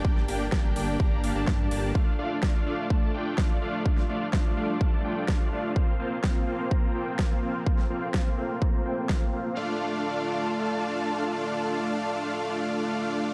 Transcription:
Already playing: G3 A#3 D4
0.05 G1 A#3 D4 G4 D5 G5, kick
0.17 snare
0.28 G1 A#3 D4 G4 D5 G5, open hi-hat
0.52 G1 A#3 D4 G4 D5 G5, kick, snare
0.76 G1 A#3 D4 G4 D5 G5, open hi-hat
1.00 G1 A#3 D4 G4 D5 A#5, kick
1.24 G1 A#3 D4 G4 D5 F5, open hi-hat
1.35 G1 A#3 D4 G4 D5 A5
1.47 G2 A#3 D4 G4 D5 A5, kick, snare
1.71 G1 A#3 D4 G4 D5 A5, open hi-hat
1.95 F3 A3 D4 F4 D5 F5, kick
2.19 A3 D4 F4 D5 F5
2.43 A3 D4 F4 D5 F5, kick, snare
2.67 A3 D4 F4 D5 F5
2.90 A3 D4 F4 D5 A5, kick
3.14 A3 D4 F4 D5 G5
3.38 A3 D4 F4 D5 F5, kick, snare
3.62 A3 D4 F4 D5 F5
3.85 G3 A3 D4 F4 D5 F5, kick
3.98 snare
4.09 A3 D4 F4 D5 F5
4.33 A3 D4 F4 D5 F5, kick, snare
4.57 A3 D4 F4 D5 F5
4.81 A3 D4 F4 D5 A5, kick
5.05 A3 D4 F4 D5 G5
5.28 A3 D4 F4 D5 F5, kick, snare
5.52 A3 D4 F4 D5 F5
5.76 A#3 C4 F4 C5 F5, kick
6.00 A#3 C4 F4 C5 F5
6.24 A#3 C4 F4 C5 F5, kick, snare
6.47 A#3 C4 F4 C5 F5
6.71 A#3 C4 F4 C5 A#5, kick
6.95 A#3 C4 F4 C5 G5
7.19 A#3 C4 F4 C5 F5, kick, snare
7.43 A#3 C4 F4 C5 F5
7.66 A3 A#3 C4 F4 C5 F5, kick
7.78 snare
7.90 A#3 C4 F4 C5 F5
8.14 A#3 C4 F4 C5 F5, kick, snare
8.38 A#3 C4 F4 C5 F5
8.62 A#3 C4 F4 C5 A#5, kick
8.85 A#3 C4 F4 C5 G5
9.09 A#3 C4 F4 C5 F5, kick, snare
9.33 A#3 C4 F4 C5 F5
9.57 D3 A3 D4 F4 A4 D5 F5 A5

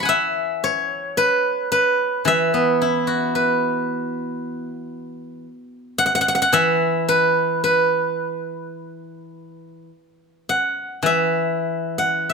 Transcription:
Already playing: E3 B4 C#6
0.00 G#5 B5
0.05 E5 F#5
0.64 C#5
1.17 B4
1.72 B4
2.25 E3 E5
2.54 B3
2.82 E4
3.07 F#4
3.35 B4
5.98 F#5
6.06 F#5
6.15 F#5
6.21 F#5
6.28 F#5
6.35 F#5
6.42 F#5
6.53 E3 E5
7.08 B4
7.64 B4
10.49 F#5
11.03 E3 E5
11.98 F#5
12.29 E5

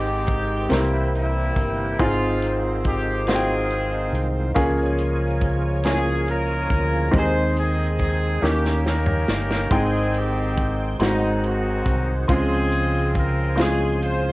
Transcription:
Already playing: G#1 G#2 D#3 G#3 C4 D#4 G4 G5
0.27 kick, closed hi-hat
0.68 C2 C3 E3 A#3 C4 E4 G4 A#4, snare, closed hi-hat
0.73 G3 A#3 E4
1.15 G3 A#3 E4, closed hi-hat
1.56 G1, kick, closed hi-hat
1.98 G#1 G#2 D#3 G#3 C4 D#4 F4 G#4 C5, kick, closed hi-hat
2.42 closed hi-hat
2.84 G4, kick, closed hi-hat
3.27 C4 D#4 F4 F#4 G#4, snare, closed hi-hat
3.35 G5
3.70 closed hi-hat
4.13 C2, closed hi-hat
4.54 C#2 C#3 F3 A#3 C#4 F4 G#4 A#4 C#5, kick, closed hi-hat
4.98 closed hi-hat
5.41 kick, closed hi-hat
5.84 A#3 C#4 F4 G#4, snare, closed hi-hat
6.28 F4 A#4, closed hi-hat
6.70 D2, kick, closed hi-hat
7.11 D#2 D#3 G#3 C4 D#4 G4 G#4 C5 D#5, kick, closed hi-hat
7.15 D#4 G#4 C5
7.56 C4 D#4 G#4, closed hi-hat
7.99 kick, closed hi-hat
8.40 D#2 D#3 A#3 C#4 D#4 F#4 G4 A#4 C#5, snare
8.48 G4
8.65 snare
8.86 C#4 G4 A#4, snare
9.06 mid tom
9.29 G1, snare
9.51 snare
9.69 G#1 G#2 D#3 G#3 C4 D#4 C5 G5, kick, closed hi-hat
9.74 D#4 G#4
10.14 G4, closed hi-hat
10.57 kick, closed hi-hat
10.99 G#1 G#2 D#3 F#3 G#3 C4 D#4 F#4, snare, closed hi-hat
11.04 D#4
11.44 C4 D#4 F#4, closed hi-hat
11.86 C2, kick, closed hi-hat
12.27 C#2 C#3 F3 G#3 C4 F4 G#4 C5, kick, closed hi-hat
12.33 G#4
12.72 closed hi-hat
13.15 A#4, kick, closed hi-hat
13.55 G#3 C4 C#4 F4, closed hi-hat
13.60 G#4, snare
14.01 F4 G#4 C5, closed hi-hat

